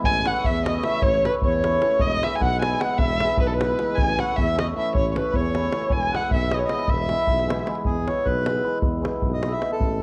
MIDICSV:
0, 0, Header, 1, 6, 480
1, 0, Start_track
1, 0, Key_signature, 4, "major"
1, 0, Tempo, 390371
1, 52, Time_signature, 5, 3, 24, 8
1, 12329, End_track
2, 0, Start_track
2, 0, Title_t, "Violin"
2, 0, Program_c, 0, 40
2, 63, Note_on_c, 0, 80, 127
2, 334, Note_on_c, 0, 78, 108
2, 353, Note_off_c, 0, 80, 0
2, 567, Note_on_c, 0, 76, 103
2, 586, Note_off_c, 0, 78, 0
2, 798, Note_off_c, 0, 76, 0
2, 805, Note_on_c, 0, 75, 81
2, 1032, Note_on_c, 0, 76, 98
2, 1050, Note_off_c, 0, 75, 0
2, 1259, Note_on_c, 0, 73, 108
2, 1278, Note_off_c, 0, 76, 0
2, 1535, Note_off_c, 0, 73, 0
2, 1544, Note_on_c, 0, 71, 93
2, 1645, Note_off_c, 0, 71, 0
2, 1777, Note_on_c, 0, 73, 94
2, 2472, Note_on_c, 0, 75, 112
2, 2490, Note_off_c, 0, 73, 0
2, 2751, Note_on_c, 0, 76, 97
2, 2770, Note_off_c, 0, 75, 0
2, 2896, Note_on_c, 0, 80, 66
2, 2914, Note_off_c, 0, 76, 0
2, 2971, Note_on_c, 0, 78, 102
2, 2989, Note_off_c, 0, 80, 0
2, 3206, Note_off_c, 0, 78, 0
2, 3213, Note_on_c, 0, 80, 95
2, 3444, Note_on_c, 0, 78, 93
2, 3462, Note_off_c, 0, 80, 0
2, 3665, Note_on_c, 0, 76, 116
2, 3683, Note_off_c, 0, 78, 0
2, 4171, Note_off_c, 0, 76, 0
2, 4176, Note_on_c, 0, 71, 91
2, 4264, Note_on_c, 0, 69, 80
2, 4282, Note_off_c, 0, 71, 0
2, 4350, Note_on_c, 0, 71, 88
2, 4368, Note_off_c, 0, 69, 0
2, 4853, Note_on_c, 0, 80, 106
2, 4872, Note_off_c, 0, 71, 0
2, 5159, Note_on_c, 0, 78, 90
2, 5177, Note_off_c, 0, 80, 0
2, 5358, Note_on_c, 0, 76, 94
2, 5377, Note_off_c, 0, 78, 0
2, 5620, Note_off_c, 0, 76, 0
2, 5643, Note_on_c, 0, 75, 76
2, 5740, Note_off_c, 0, 75, 0
2, 5870, Note_on_c, 0, 76, 80
2, 6066, Note_off_c, 0, 76, 0
2, 6086, Note_on_c, 0, 73, 99
2, 6271, Note_off_c, 0, 73, 0
2, 6283, Note_on_c, 0, 73, 53
2, 6364, Note_on_c, 0, 71, 85
2, 6382, Note_off_c, 0, 73, 0
2, 6581, Note_on_c, 0, 73, 104
2, 6600, Note_off_c, 0, 71, 0
2, 7282, Note_on_c, 0, 80, 122
2, 7300, Note_off_c, 0, 73, 0
2, 7568, Note_on_c, 0, 78, 97
2, 7586, Note_off_c, 0, 80, 0
2, 7784, Note_off_c, 0, 78, 0
2, 7790, Note_on_c, 0, 76, 96
2, 8043, Note_on_c, 0, 75, 69
2, 8061, Note_off_c, 0, 76, 0
2, 8105, Note_on_c, 0, 73, 68
2, 8123, Note_off_c, 0, 75, 0
2, 8226, Note_on_c, 0, 75, 81
2, 8244, Note_off_c, 0, 73, 0
2, 8481, Note_on_c, 0, 76, 100
2, 8499, Note_off_c, 0, 75, 0
2, 9450, Note_off_c, 0, 76, 0
2, 12329, End_track
3, 0, Start_track
3, 0, Title_t, "Accordion"
3, 0, Program_c, 1, 21
3, 59, Note_on_c, 1, 80, 89
3, 313, Note_off_c, 1, 80, 0
3, 328, Note_on_c, 1, 78, 78
3, 546, Note_on_c, 1, 76, 88
3, 558, Note_off_c, 1, 78, 0
3, 807, Note_off_c, 1, 76, 0
3, 815, Note_on_c, 1, 75, 84
3, 1020, Note_off_c, 1, 75, 0
3, 1025, Note_on_c, 1, 76, 86
3, 1245, Note_on_c, 1, 73, 77
3, 1252, Note_off_c, 1, 76, 0
3, 1528, Note_off_c, 1, 73, 0
3, 1565, Note_on_c, 1, 71, 64
3, 1661, Note_off_c, 1, 71, 0
3, 1777, Note_on_c, 1, 73, 82
3, 2421, Note_off_c, 1, 73, 0
3, 2468, Note_on_c, 1, 75, 76
3, 2727, Note_on_c, 1, 76, 81
3, 2742, Note_off_c, 1, 75, 0
3, 2905, Note_off_c, 1, 76, 0
3, 2915, Note_on_c, 1, 80, 57
3, 2964, Note_on_c, 1, 78, 94
3, 2970, Note_off_c, 1, 80, 0
3, 3215, Note_on_c, 1, 80, 84
3, 3221, Note_off_c, 1, 78, 0
3, 3425, Note_off_c, 1, 80, 0
3, 3477, Note_on_c, 1, 78, 76
3, 3682, Note_off_c, 1, 78, 0
3, 3698, Note_on_c, 1, 76, 70
3, 4187, Note_off_c, 1, 76, 0
3, 4200, Note_on_c, 1, 71, 73
3, 4257, Note_on_c, 1, 69, 73
3, 4274, Note_off_c, 1, 71, 0
3, 4355, Note_off_c, 1, 69, 0
3, 4387, Note_on_c, 1, 71, 72
3, 4864, Note_on_c, 1, 80, 85
3, 4883, Note_off_c, 1, 71, 0
3, 5143, Note_off_c, 1, 80, 0
3, 5146, Note_on_c, 1, 78, 72
3, 5374, Note_off_c, 1, 78, 0
3, 5386, Note_on_c, 1, 76, 80
3, 5628, Note_on_c, 1, 75, 80
3, 5634, Note_off_c, 1, 76, 0
3, 5728, Note_off_c, 1, 75, 0
3, 5858, Note_on_c, 1, 76, 70
3, 6060, Note_off_c, 1, 76, 0
3, 6085, Note_on_c, 1, 73, 81
3, 6265, Note_off_c, 1, 73, 0
3, 6283, Note_on_c, 1, 73, 48
3, 6334, Note_on_c, 1, 71, 67
3, 6344, Note_off_c, 1, 73, 0
3, 6568, Note_off_c, 1, 71, 0
3, 6568, Note_on_c, 1, 73, 85
3, 7246, Note_on_c, 1, 80, 83
3, 7267, Note_off_c, 1, 73, 0
3, 7525, Note_on_c, 1, 78, 70
3, 7533, Note_off_c, 1, 80, 0
3, 7741, Note_on_c, 1, 76, 83
3, 7763, Note_off_c, 1, 78, 0
3, 7992, Note_off_c, 1, 76, 0
3, 8004, Note_on_c, 1, 75, 94
3, 8065, Note_on_c, 1, 73, 77
3, 8097, Note_off_c, 1, 75, 0
3, 8167, Note_off_c, 1, 73, 0
3, 8176, Note_on_c, 1, 75, 83
3, 8461, Note_off_c, 1, 75, 0
3, 8465, Note_on_c, 1, 76, 72
3, 9442, Note_off_c, 1, 76, 0
3, 9662, Note_on_c, 1, 68, 75
3, 9937, Note_on_c, 1, 73, 88
3, 9946, Note_off_c, 1, 68, 0
3, 10150, Note_on_c, 1, 71, 95
3, 10172, Note_off_c, 1, 73, 0
3, 10802, Note_off_c, 1, 71, 0
3, 11481, Note_on_c, 1, 75, 79
3, 11709, Note_on_c, 1, 76, 86
3, 11727, Note_off_c, 1, 75, 0
3, 11943, Note_off_c, 1, 76, 0
3, 11955, Note_on_c, 1, 69, 79
3, 12329, Note_off_c, 1, 69, 0
3, 12329, End_track
4, 0, Start_track
4, 0, Title_t, "Hammered dulcimer"
4, 0, Program_c, 2, 15
4, 327, Note_on_c, 2, 52, 59
4, 327, Note_on_c, 2, 57, 50
4, 336, Note_on_c, 2, 61, 54
4, 339, Note_on_c, 2, 64, 67
4, 499, Note_off_c, 2, 57, 0
4, 504, Note_off_c, 2, 61, 0
4, 505, Note_off_c, 2, 64, 0
4, 796, Note_off_c, 2, 52, 0
4, 810, Note_on_c, 2, 52, 66
4, 815, Note_on_c, 2, 57, 59
4, 823, Note_on_c, 2, 61, 54
4, 828, Note_on_c, 2, 64, 77
4, 981, Note_off_c, 2, 57, 0
4, 985, Note_off_c, 2, 61, 0
4, 987, Note_off_c, 2, 64, 0
4, 1017, Note_off_c, 2, 52, 0
4, 1032, Note_on_c, 2, 52, 57
4, 1035, Note_on_c, 2, 57, 64
4, 1043, Note_on_c, 2, 61, 61
4, 1051, Note_on_c, 2, 64, 70
4, 1201, Note_off_c, 2, 57, 0
4, 1206, Note_off_c, 2, 61, 0
4, 1209, Note_off_c, 2, 64, 0
4, 1500, Note_off_c, 2, 52, 0
4, 1514, Note_on_c, 2, 52, 56
4, 1526, Note_on_c, 2, 61, 56
4, 1527, Note_on_c, 2, 57, 52
4, 1541, Note_on_c, 2, 64, 65
4, 1702, Note_off_c, 2, 61, 0
4, 1703, Note_off_c, 2, 57, 0
4, 1709, Note_off_c, 2, 64, 0
4, 1987, Note_off_c, 2, 52, 0
4, 2002, Note_on_c, 2, 52, 60
4, 2008, Note_on_c, 2, 57, 62
4, 2021, Note_on_c, 2, 61, 55
4, 2028, Note_on_c, 2, 64, 76
4, 2179, Note_off_c, 2, 57, 0
4, 2186, Note_off_c, 2, 61, 0
4, 2190, Note_off_c, 2, 64, 0
4, 2215, Note_off_c, 2, 52, 0
4, 2230, Note_on_c, 2, 52, 65
4, 2242, Note_on_c, 2, 57, 55
4, 2248, Note_on_c, 2, 61, 59
4, 2255, Note_on_c, 2, 64, 71
4, 2408, Note_off_c, 2, 57, 0
4, 2410, Note_off_c, 2, 61, 0
4, 2414, Note_off_c, 2, 64, 0
4, 2523, Note_off_c, 2, 52, 0
4, 2723, Note_on_c, 2, 56, 61
4, 2725, Note_on_c, 2, 52, 65
4, 2737, Note_on_c, 2, 59, 48
4, 2747, Note_on_c, 2, 64, 58
4, 2909, Note_off_c, 2, 59, 0
4, 2915, Note_off_c, 2, 64, 0
4, 3184, Note_off_c, 2, 52, 0
4, 3199, Note_off_c, 2, 56, 0
4, 3199, Note_on_c, 2, 52, 72
4, 3212, Note_on_c, 2, 56, 64
4, 3212, Note_on_c, 2, 59, 59
4, 3216, Note_on_c, 2, 64, 73
4, 3384, Note_off_c, 2, 59, 0
4, 3385, Note_off_c, 2, 64, 0
4, 3413, Note_off_c, 2, 52, 0
4, 3417, Note_off_c, 2, 56, 0
4, 3424, Note_on_c, 2, 52, 65
4, 3432, Note_on_c, 2, 56, 56
4, 3436, Note_on_c, 2, 59, 55
4, 3441, Note_on_c, 2, 64, 70
4, 3605, Note_off_c, 2, 59, 0
4, 3609, Note_off_c, 2, 64, 0
4, 3917, Note_off_c, 2, 52, 0
4, 3930, Note_off_c, 2, 56, 0
4, 3932, Note_on_c, 2, 52, 60
4, 3945, Note_on_c, 2, 56, 56
4, 3957, Note_on_c, 2, 59, 54
4, 3962, Note_on_c, 2, 64, 64
4, 4121, Note_off_c, 2, 59, 0
4, 4124, Note_off_c, 2, 64, 0
4, 4387, Note_off_c, 2, 52, 0
4, 4396, Note_off_c, 2, 56, 0
4, 4402, Note_on_c, 2, 52, 62
4, 4411, Note_on_c, 2, 56, 64
4, 4419, Note_on_c, 2, 59, 57
4, 4431, Note_on_c, 2, 64, 74
4, 4589, Note_off_c, 2, 59, 0
4, 4595, Note_off_c, 2, 64, 0
4, 4632, Note_off_c, 2, 56, 0
4, 4633, Note_off_c, 2, 52, 0
4, 4647, Note_on_c, 2, 56, 57
4, 4648, Note_on_c, 2, 52, 64
4, 4661, Note_on_c, 2, 59, 53
4, 4664, Note_on_c, 2, 64, 65
4, 4821, Note_off_c, 2, 59, 0
4, 4822, Note_off_c, 2, 64, 0
4, 4931, Note_off_c, 2, 52, 0
4, 4931, Note_off_c, 2, 56, 0
4, 5125, Note_on_c, 2, 52, 63
4, 5127, Note_on_c, 2, 57, 61
4, 5135, Note_on_c, 2, 61, 52
4, 5149, Note_on_c, 2, 64, 59
4, 5308, Note_off_c, 2, 57, 0
4, 5312, Note_off_c, 2, 61, 0
4, 5318, Note_off_c, 2, 64, 0
4, 5587, Note_off_c, 2, 52, 0
4, 5602, Note_on_c, 2, 52, 64
4, 5615, Note_on_c, 2, 57, 64
4, 5627, Note_on_c, 2, 61, 61
4, 5628, Note_on_c, 2, 64, 65
4, 5787, Note_off_c, 2, 57, 0
4, 5794, Note_off_c, 2, 61, 0
4, 5794, Note_off_c, 2, 64, 0
4, 5835, Note_off_c, 2, 52, 0
4, 5850, Note_on_c, 2, 52, 63
4, 5863, Note_on_c, 2, 57, 54
4, 5874, Note_on_c, 2, 64, 69
4, 5876, Note_on_c, 2, 61, 57
4, 6022, Note_off_c, 2, 57, 0
4, 6027, Note_off_c, 2, 64, 0
4, 6029, Note_off_c, 2, 61, 0
4, 6327, Note_off_c, 2, 52, 0
4, 6342, Note_on_c, 2, 52, 54
4, 6356, Note_on_c, 2, 57, 57
4, 6360, Note_on_c, 2, 61, 54
4, 6370, Note_on_c, 2, 64, 66
4, 6523, Note_off_c, 2, 57, 0
4, 6524, Note_off_c, 2, 61, 0
4, 6529, Note_off_c, 2, 64, 0
4, 6807, Note_off_c, 2, 52, 0
4, 6822, Note_on_c, 2, 52, 66
4, 6833, Note_on_c, 2, 57, 57
4, 6842, Note_on_c, 2, 61, 57
4, 6845, Note_on_c, 2, 64, 69
4, 6996, Note_off_c, 2, 57, 0
4, 7001, Note_off_c, 2, 61, 0
4, 7002, Note_off_c, 2, 64, 0
4, 7024, Note_off_c, 2, 52, 0
4, 7038, Note_on_c, 2, 52, 64
4, 7042, Note_on_c, 2, 57, 58
4, 7053, Note_on_c, 2, 61, 57
4, 7060, Note_on_c, 2, 64, 65
4, 7211, Note_off_c, 2, 57, 0
4, 7217, Note_off_c, 2, 61, 0
4, 7220, Note_off_c, 2, 64, 0
4, 7331, Note_off_c, 2, 52, 0
4, 7533, Note_on_c, 2, 52, 55
4, 7538, Note_on_c, 2, 56, 54
4, 7550, Note_on_c, 2, 59, 59
4, 7560, Note_on_c, 2, 64, 73
4, 7718, Note_off_c, 2, 59, 0
4, 7723, Note_off_c, 2, 64, 0
4, 7999, Note_off_c, 2, 52, 0
4, 8013, Note_off_c, 2, 56, 0
4, 8014, Note_on_c, 2, 52, 75
4, 8027, Note_on_c, 2, 56, 62
4, 8030, Note_on_c, 2, 59, 55
4, 8042, Note_on_c, 2, 64, 75
4, 8193, Note_off_c, 2, 59, 0
4, 8200, Note_off_c, 2, 64, 0
4, 8214, Note_off_c, 2, 56, 0
4, 8216, Note_off_c, 2, 52, 0
4, 8230, Note_on_c, 2, 56, 60
4, 8231, Note_on_c, 2, 52, 68
4, 8237, Note_on_c, 2, 59, 62
4, 8244, Note_on_c, 2, 64, 66
4, 8408, Note_off_c, 2, 59, 0
4, 8411, Note_off_c, 2, 64, 0
4, 8707, Note_off_c, 2, 52, 0
4, 8709, Note_off_c, 2, 56, 0
4, 8722, Note_on_c, 2, 52, 57
4, 8724, Note_on_c, 2, 56, 61
4, 8732, Note_on_c, 2, 59, 52
4, 8737, Note_on_c, 2, 64, 66
4, 8908, Note_off_c, 2, 59, 0
4, 8910, Note_off_c, 2, 64, 0
4, 9184, Note_off_c, 2, 52, 0
4, 9189, Note_off_c, 2, 56, 0
4, 9198, Note_on_c, 2, 52, 71
4, 9204, Note_on_c, 2, 56, 70
4, 9214, Note_on_c, 2, 59, 70
4, 9220, Note_on_c, 2, 64, 93
4, 9384, Note_off_c, 2, 59, 0
4, 9387, Note_off_c, 2, 64, 0
4, 9399, Note_off_c, 2, 52, 0
4, 9403, Note_off_c, 2, 56, 0
4, 9413, Note_on_c, 2, 52, 81
4, 9418, Note_on_c, 2, 56, 65
4, 9434, Note_on_c, 2, 59, 64
4, 9438, Note_on_c, 2, 64, 82
4, 9604, Note_off_c, 2, 59, 0
4, 9606, Note_off_c, 2, 64, 0
4, 9725, Note_off_c, 2, 56, 0
4, 9726, Note_off_c, 2, 52, 0
4, 9923, Note_on_c, 2, 52, 46
4, 9925, Note_on_c, 2, 56, 45
4, 9933, Note_on_c, 2, 59, 53
4, 9942, Note_on_c, 2, 64, 66
4, 10106, Note_off_c, 2, 59, 0
4, 10111, Note_off_c, 2, 64, 0
4, 10397, Note_off_c, 2, 52, 0
4, 10401, Note_off_c, 2, 56, 0
4, 10411, Note_on_c, 2, 52, 63
4, 10416, Note_on_c, 2, 56, 55
4, 10429, Note_on_c, 2, 59, 57
4, 10435, Note_on_c, 2, 64, 65
4, 10589, Note_off_c, 2, 59, 0
4, 10592, Note_off_c, 2, 64, 0
4, 10598, Note_off_c, 2, 52, 0
4, 10604, Note_off_c, 2, 56, 0
4, 10612, Note_on_c, 2, 52, 55
4, 10619, Note_on_c, 2, 56, 49
4, 10626, Note_on_c, 2, 59, 56
4, 10634, Note_on_c, 2, 64, 62
4, 10798, Note_off_c, 2, 59, 0
4, 10802, Note_off_c, 2, 64, 0
4, 11072, Note_off_c, 2, 52, 0
4, 11084, Note_off_c, 2, 56, 0
4, 11086, Note_on_c, 2, 52, 58
4, 11098, Note_on_c, 2, 56, 62
4, 11107, Note_on_c, 2, 59, 54
4, 11113, Note_on_c, 2, 64, 68
4, 11290, Note_off_c, 2, 59, 0
4, 11294, Note_off_c, 2, 64, 0
4, 11568, Note_off_c, 2, 52, 0
4, 11574, Note_off_c, 2, 56, 0
4, 11583, Note_on_c, 2, 52, 55
4, 11589, Note_on_c, 2, 56, 53
4, 11602, Note_on_c, 2, 59, 63
4, 11605, Note_on_c, 2, 64, 66
4, 11773, Note_off_c, 2, 59, 0
4, 11773, Note_off_c, 2, 64, 0
4, 11779, Note_off_c, 2, 52, 0
4, 11788, Note_off_c, 2, 56, 0
4, 11794, Note_on_c, 2, 52, 55
4, 11803, Note_on_c, 2, 56, 59
4, 11809, Note_on_c, 2, 59, 62
4, 11826, Note_on_c, 2, 64, 67
4, 11986, Note_off_c, 2, 59, 0
4, 11994, Note_off_c, 2, 64, 0
4, 12114, Note_off_c, 2, 52, 0
4, 12114, Note_off_c, 2, 56, 0
4, 12329, End_track
5, 0, Start_track
5, 0, Title_t, "Tuba"
5, 0, Program_c, 3, 58
5, 71, Note_on_c, 3, 33, 80
5, 369, Note_off_c, 3, 33, 0
5, 577, Note_on_c, 3, 40, 90
5, 991, Note_off_c, 3, 40, 0
5, 1266, Note_on_c, 3, 33, 84
5, 1567, Note_off_c, 3, 33, 0
5, 1767, Note_on_c, 3, 40, 96
5, 2185, Note_off_c, 3, 40, 0
5, 2458, Note_on_c, 3, 28, 93
5, 2763, Note_off_c, 3, 28, 0
5, 2953, Note_on_c, 3, 35, 105
5, 3376, Note_off_c, 3, 35, 0
5, 3681, Note_on_c, 3, 28, 93
5, 3980, Note_off_c, 3, 28, 0
5, 4165, Note_on_c, 3, 35, 96
5, 4585, Note_off_c, 3, 35, 0
5, 4879, Note_on_c, 3, 33, 84
5, 5179, Note_off_c, 3, 33, 0
5, 5390, Note_on_c, 3, 40, 94
5, 5803, Note_off_c, 3, 40, 0
5, 6078, Note_on_c, 3, 33, 87
5, 6378, Note_off_c, 3, 33, 0
5, 6562, Note_on_c, 3, 40, 100
5, 6983, Note_off_c, 3, 40, 0
5, 7269, Note_on_c, 3, 28, 89
5, 7571, Note_off_c, 3, 28, 0
5, 7753, Note_on_c, 3, 35, 97
5, 8175, Note_off_c, 3, 35, 0
5, 8463, Note_on_c, 3, 28, 93
5, 8766, Note_off_c, 3, 28, 0
5, 8956, Note_on_c, 3, 35, 83
5, 9377, Note_off_c, 3, 35, 0
5, 9650, Note_on_c, 3, 40, 71
5, 9955, Note_off_c, 3, 40, 0
5, 10150, Note_on_c, 3, 35, 94
5, 10571, Note_off_c, 3, 35, 0
5, 10848, Note_on_c, 3, 40, 86
5, 11152, Note_off_c, 3, 40, 0
5, 11351, Note_on_c, 3, 35, 91
5, 11769, Note_off_c, 3, 35, 0
5, 12040, Note_on_c, 3, 33, 80
5, 12329, Note_off_c, 3, 33, 0
5, 12329, End_track
6, 0, Start_track
6, 0, Title_t, "Davul"
6, 49, Note_on_c, 9, 43, 93
6, 172, Note_off_c, 9, 43, 0
6, 191, Note_on_c, 9, 37, 21
6, 314, Note_off_c, 9, 37, 0
6, 316, Note_on_c, 9, 37, 63
6, 439, Note_off_c, 9, 37, 0
6, 547, Note_on_c, 9, 43, 87
6, 670, Note_off_c, 9, 43, 0
6, 816, Note_on_c, 9, 37, 83
6, 939, Note_off_c, 9, 37, 0
6, 1028, Note_on_c, 9, 37, 58
6, 1151, Note_off_c, 9, 37, 0
6, 1171, Note_on_c, 9, 37, 25
6, 1257, Note_on_c, 9, 43, 105
6, 1294, Note_off_c, 9, 37, 0
6, 1380, Note_off_c, 9, 43, 0
6, 1403, Note_on_c, 9, 37, 22
6, 1526, Note_off_c, 9, 37, 0
6, 1540, Note_on_c, 9, 37, 56
6, 1663, Note_off_c, 9, 37, 0
6, 1742, Note_on_c, 9, 43, 93
6, 1865, Note_off_c, 9, 43, 0
6, 2013, Note_on_c, 9, 37, 66
6, 2136, Note_off_c, 9, 37, 0
6, 2233, Note_on_c, 9, 37, 55
6, 2355, Note_off_c, 9, 37, 0
6, 2355, Note_on_c, 9, 37, 25
6, 2450, Note_on_c, 9, 43, 96
6, 2478, Note_off_c, 9, 37, 0
6, 2573, Note_off_c, 9, 43, 0
6, 2597, Note_on_c, 9, 37, 23
6, 2720, Note_off_c, 9, 37, 0
6, 2743, Note_on_c, 9, 37, 66
6, 2866, Note_off_c, 9, 37, 0
6, 2964, Note_on_c, 9, 43, 84
6, 3087, Note_off_c, 9, 43, 0
6, 3226, Note_on_c, 9, 37, 84
6, 3349, Note_off_c, 9, 37, 0
6, 3453, Note_on_c, 9, 37, 71
6, 3565, Note_off_c, 9, 37, 0
6, 3565, Note_on_c, 9, 37, 30
6, 3669, Note_on_c, 9, 43, 110
6, 3688, Note_off_c, 9, 37, 0
6, 3792, Note_off_c, 9, 43, 0
6, 3806, Note_on_c, 9, 37, 26
6, 3929, Note_off_c, 9, 37, 0
6, 3938, Note_on_c, 9, 37, 70
6, 4050, Note_off_c, 9, 37, 0
6, 4050, Note_on_c, 9, 37, 27
6, 4147, Note_on_c, 9, 43, 104
6, 4173, Note_off_c, 9, 37, 0
6, 4270, Note_off_c, 9, 43, 0
6, 4298, Note_on_c, 9, 37, 28
6, 4421, Note_off_c, 9, 37, 0
6, 4434, Note_on_c, 9, 37, 81
6, 4557, Note_off_c, 9, 37, 0
6, 4657, Note_on_c, 9, 37, 54
6, 4780, Note_off_c, 9, 37, 0
6, 4891, Note_on_c, 9, 43, 106
6, 5014, Note_off_c, 9, 43, 0
6, 5032, Note_on_c, 9, 37, 30
6, 5148, Note_off_c, 9, 37, 0
6, 5148, Note_on_c, 9, 37, 62
6, 5271, Note_off_c, 9, 37, 0
6, 5382, Note_on_c, 9, 43, 86
6, 5505, Note_off_c, 9, 43, 0
6, 5637, Note_on_c, 9, 37, 84
6, 5760, Note_off_c, 9, 37, 0
6, 5971, Note_on_c, 9, 37, 25
6, 6082, Note_on_c, 9, 43, 100
6, 6094, Note_off_c, 9, 37, 0
6, 6205, Note_off_c, 9, 43, 0
6, 6215, Note_on_c, 9, 37, 22
6, 6338, Note_off_c, 9, 37, 0
6, 6344, Note_on_c, 9, 37, 64
6, 6467, Note_off_c, 9, 37, 0
6, 6558, Note_on_c, 9, 43, 78
6, 6681, Note_off_c, 9, 43, 0
6, 6820, Note_on_c, 9, 37, 63
6, 6943, Note_off_c, 9, 37, 0
6, 7038, Note_on_c, 9, 37, 67
6, 7151, Note_off_c, 9, 37, 0
6, 7151, Note_on_c, 9, 37, 29
6, 7255, Note_on_c, 9, 43, 100
6, 7274, Note_off_c, 9, 37, 0
6, 7378, Note_off_c, 9, 43, 0
6, 7409, Note_on_c, 9, 37, 24
6, 7532, Note_off_c, 9, 37, 0
6, 7558, Note_on_c, 9, 37, 68
6, 7681, Note_off_c, 9, 37, 0
6, 7760, Note_on_c, 9, 43, 96
6, 7883, Note_off_c, 9, 43, 0
6, 8011, Note_on_c, 9, 37, 72
6, 8134, Note_off_c, 9, 37, 0
6, 8232, Note_on_c, 9, 37, 59
6, 8349, Note_off_c, 9, 37, 0
6, 8349, Note_on_c, 9, 37, 26
6, 8457, Note_on_c, 9, 43, 97
6, 8472, Note_off_c, 9, 37, 0
6, 8580, Note_off_c, 9, 43, 0
6, 8580, Note_on_c, 9, 37, 24
6, 8702, Note_off_c, 9, 37, 0
6, 8718, Note_on_c, 9, 37, 53
6, 8841, Note_off_c, 9, 37, 0
6, 8844, Note_on_c, 9, 37, 25
6, 8942, Note_on_c, 9, 43, 89
6, 8967, Note_off_c, 9, 37, 0
6, 9065, Note_off_c, 9, 43, 0
6, 9089, Note_on_c, 9, 37, 25
6, 9212, Note_off_c, 9, 37, 0
6, 9226, Note_on_c, 9, 37, 74
6, 9336, Note_off_c, 9, 37, 0
6, 9336, Note_on_c, 9, 37, 24
6, 9432, Note_off_c, 9, 37, 0
6, 9432, Note_on_c, 9, 37, 53
6, 9533, Note_off_c, 9, 37, 0
6, 9533, Note_on_c, 9, 37, 29
6, 9652, Note_on_c, 9, 43, 95
6, 9656, Note_off_c, 9, 37, 0
6, 9775, Note_off_c, 9, 43, 0
6, 9931, Note_on_c, 9, 37, 56
6, 10054, Note_off_c, 9, 37, 0
6, 10159, Note_on_c, 9, 43, 75
6, 10282, Note_off_c, 9, 43, 0
6, 10406, Note_on_c, 9, 37, 75
6, 10514, Note_off_c, 9, 37, 0
6, 10514, Note_on_c, 9, 37, 23
6, 10637, Note_off_c, 9, 37, 0
6, 10850, Note_on_c, 9, 43, 107
6, 10973, Note_off_c, 9, 43, 0
6, 11129, Note_on_c, 9, 37, 61
6, 11252, Note_off_c, 9, 37, 0
6, 11339, Note_on_c, 9, 43, 88
6, 11462, Note_off_c, 9, 43, 0
6, 11593, Note_on_c, 9, 37, 65
6, 11710, Note_off_c, 9, 37, 0
6, 11710, Note_on_c, 9, 37, 23
6, 11827, Note_off_c, 9, 37, 0
6, 11827, Note_on_c, 9, 37, 53
6, 11950, Note_off_c, 9, 37, 0
6, 12057, Note_on_c, 9, 43, 95
6, 12180, Note_off_c, 9, 43, 0
6, 12329, End_track
0, 0, End_of_file